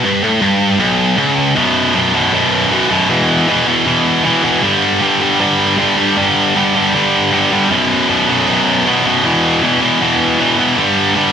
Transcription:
0.04 0.23 G2 loud
0.24 0.41 A2 medium
0.42 0.80 G2 loud
0.80 1.18 B1 medium
1.18 1.55 C#2 loud
1.56 1.93 B1 medium
1.56 1.94 F#2 loud
1.56 1.94 B2 loud
1.95 2.13 B1 medium
1.95 2.13 F#2 medium
1.95 2.14 B2 medium
2.14 2.32 B1 medium
2.14 2.32 F#2 loud
2.14 2.33 B2 loud
2.33 2.70 B1 medium
2.33 2.71 F#2 loud
2.33 2.72 B2 loud
2.71 2.89 B1 medium
2.71 2.90 F#2 medium
2.71 2.90 B2 medium
2.90 3.09 B1 medium
2.90 3.09 F#2 loud
2.90 3.09 B2 loud
3.09 3.47 E2 medium
3.09 3.47 B2 loud
3.09 3.48 E3 loud
3.48 3.65 E2 medium
3.48 3.66 B2 loud
3.48 3.67 E3 medium
3.66 3.85 E2 medium
3.66 3.85 B2 medium
3.66 3.86 E3 loud
3.86 4.23 E2 medium
3.86 4.24 B2 medium
3.86 4.24 E3 medium
4.24 4.42 E2 medium
4.24 4.43 B2 medium
4.24 4.44 E3 medium
4.43 4.62 E2 medium
4.43 4.62 B2 loud
4.43 4.63 E3 loud
4.63 5.01 G2 loud
4.63 5.00 D3 loud
4.63 5.01 G3 loud
5.01 5.20 G2 medium
5.01 5.19 D3 medium
5.01 5.21 G3 medium
5.20 5.38 G2 medium
5.20 5.39 D3 medium
5.20 5.40 G3 medium
5.40 5.76 G2 medium
5.40 5.77 D3 loud
5.40 5.78 G3 loud
5.77 5.95 G2 medium
5.77 5.96 D3 medium
5.77 5.97 G3 medium
5.97 6.16 G2 loud
5.97 6.16 D3 medium
5.97 6.16 G3 loud
6.17 6.54 G2 loud
6.17 6.55 D3 loud
6.17 6.55 G3 loud
6.55 6.74 G2 medium
6.55 6.75 D3 loud
6.55 6.75 G3 loud
6.75 6.92 G2 medium
6.75 6.93 D3 medium
6.75 6.94 G3 loud
6.93 7.31 G2 medium
6.93 7.31 D3 medium
6.93 7.32 G3 loud
7.32 7.49 G2 medium
7.32 7.51 D3 medium
7.32 7.51 G3 medium
7.50 7.69 G2 medium
7.50 7.70 D3 loud
7.50 7.70 G3 medium
7.70 8.07 B1 medium
7.70 8.08 F#2 loud
7.70 8.08 B2 loud
8.08 8.27 B1 medium
8.08 8.28 F#2 medium
8.08 8.29 B2 loud
8.28 8.46 B1 medium
8.28 8.47 F#2 medium
8.28 8.48 B2 medium
8.47 8.85 B1 medium
8.47 8.85 F#2 medium
8.47 8.86 B2 medium
8.86 9.04 B1 medium
8.86 9.05 F#2 medium
8.86 9.05 B2 loud
9.05 9.23 B1 medium
9.05 9.24 F#2 medium
9.05 9.24 B2 medium
9.24 9.61 E2 medium
9.24 9.62 B2 loud
9.24 9.62 E3 loud
9.62 9.79 E2 medium
9.62 9.80 B2 loud
9.62 9.80 E3 loud
9.81 9.99 E2 medium
9.81 10.00 B2 medium
9.81 10.01 E3 loud
10.00 10.38 E2 medium
10.00 10.39 B2 loud
10.00 10.39 E3 loud
10.39 10.56 E2 medium
10.39 10.57 B2 medium
10.39 10.58 E3 loud
10.57 10.76 E2 medium
10.57 10.77 B2 loud
10.57 10.77 E3 loud
10.77 11.14 G2 medium
10.77 11.15 D3 loud
10.77 11.15 G3 loud
11.15 11.32 G2 medium
11.15 11.32 D3 medium
11.15 11.32 G3 loud

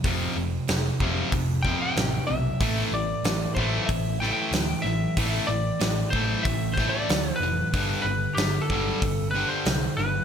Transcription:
0.04 0.25 F1 medium
0.04 0.36 F2 medium
0.04 0.36 C3 medium
0.04 0.36 F3 medium
0.04 kick loud
0.04 open hi-hat medium
0.36 0.57 F1 medium
0.36 0.66 F2 medium
0.36 0.66 C3 medium
0.68 0.90 F1 medium
0.68 0.98 F2 medium
0.68 0.98 C3 medium
0.68 snare loud
0.68 open hi-hat medium
1.00 1.22 F1 medium
1.00 1.32 F2 medium
1.00 1.32 C3 loud
1.00 1.32 F3 loud
1.00 kick medium
1.32 1.74 F1 medium
1.32 1.63 F2 medium
1.32 1.63 C3 medium
1.32 kick loud
1.32 open hi-hat medium
1.63 1.95 F2 medium
1.63 1.96 C3 medium
1.63 1.96 F3 medium
1.63 1.81 G5 medium
1.63 kick medium
1.82 2.26 G5 loud
1.96 2.18 A1 medium
1.96 2.26 F2 medium
1.96 2.26 C3 medium
1.96 snare loud
1.96 open hi-hat medium
2.27 2.51 B1 medium
2.27 2.58 F2 medium
2.27 2.59 C3 medium
2.27 2.94 E5 medium
2.60 2.82 A1 medium
2.60 2.91 A2 medium
2.60 2.92 E3 medium
2.60 2.92 A3 medium
2.60 kick loud
2.60 open hi-hat soft
2.92 3.13 A1 medium
2.92 3.23 A2 medium
2.92 3.23 E3 medium
2.92 3.54 D5 medium
3.23 3.45 A1 medium
3.23 3.54 A2 medium
3.23 3.55 E3 medium
3.23 snare loud
3.23 open hi-hat soft
3.55 3.77 A1 medium
3.55 3.88 A2 medium
3.55 3.88 E3 medium
3.55 3.88 A3 medium
3.55 3.89 C5 medium
3.55 kick medium
3.86 4.30 A1 medium
3.86 4.19 A2 medium
3.86 4.20 E5 medium
3.86 kick loud
3.86 open hi-hat medium
3.90 4.19 E3 medium
4.20 4.52 A2 medium
4.20 4.52 E3 medium
4.20 4.53 A3 medium
4.20 4.31 G5 medium
4.20 snare soft
4.33 4.85 G5 loud
4.51 4.73 D2 medium
4.51 4.83 A2 medium
4.51 snare loud
4.51 open hi-hat medium
4.55 4.84 E3 medium
4.82 5.06 A1 medium
4.82 5.47 E5 medium
4.87 5.15 A2 medium
4.87 5.15 E3 medium
5.17 5.38 A1 medium
5.17 5.48 A2 medium
5.17 5.49 E3 medium
5.17 5.49 A3 loud
5.17 kick loud
5.17 open hi-hat medium
5.47 5.70 A1 medium
5.47 6.09 D5 medium
5.51 5.80 A2 medium
5.51 5.80 E3 medium
5.80 6.02 A1 medium
5.80 6.12 A2 medium
5.80 6.12 E3 medium
5.80 snare loud
5.80 open hi-hat medium
6.10 6.34 A1 medium
6.10 6.45 C5 medium
6.10 kick medium
6.15 6.45 A2 medium
6.15 6.45 E3 medium
6.15 6.45 A3 loud
6.43 6.87 A1 medium
6.43 6.75 A2 medium
6.43 6.75 E3 medium
6.43 6.74 E5 medium
6.43 kick loud
6.43 open hi-hat medium
6.74 6.91 C5 medium
6.74 kick medium
6.78 7.08 A2 medium
6.78 7.09 E3 medium
6.78 7.09 A3 medium
6.78 snare soft
6.89 7.31 D5 medium
7.09 7.30 D2 medium
7.09 7.39 A2 medium
7.09 7.40 E3 medium
7.09 snare loud
7.09 open hi-hat medium
7.31 7.41 C5 medium
7.36 8.01 B4 medium
7.40 7.62 F1 medium
7.40 7.72 A2 medium
7.40 7.72 E3 medium
7.73 7.94 G1 medium
7.73 8.05 G2 medium
7.73 8.05 D3 medium
7.73 8.06 G3 loud
7.73 kick loud
7.73 open hi-hat medium
8.02 8.26 G1 medium
8.02 8.37 B4 medium
8.08 8.36 G2 medium
8.08 8.36 D3 medium
8.35 8.58 G1 medium
8.35 8.69 G4 medium
8.35 snare loud
8.35 open hi-hat medium
8.40 8.68 G2 medium
8.40 8.68 D3 medium
8.62 9.30 A4 medium
8.69 8.90 G1 medium
8.69 9.01 G2 medium
8.69 9.01 D3 medium
8.69 9.02 G3 loud
8.69 kick medium
9.02 9.43 G1 medium
9.02 9.32 G2 medium
9.02 9.32 D3 medium
9.02 kick loud
9.02 open hi-hat medium
9.31 9.64 G2 medium
9.31 9.49 B4 medium
9.36 9.65 D3 medium
9.36 9.65 G3 medium
9.49 9.96 C5 medium
9.65 9.87 C2 medium
9.65 9.96 G2 medium
9.65 9.96 D3 medium
9.65 snare loud
9.65 open hi-hat medium
9.97 10.19 G1 medium
9.97 10.24 G2 medium
9.97 10.24 D3 medium
9.97 10.24 B4 medium

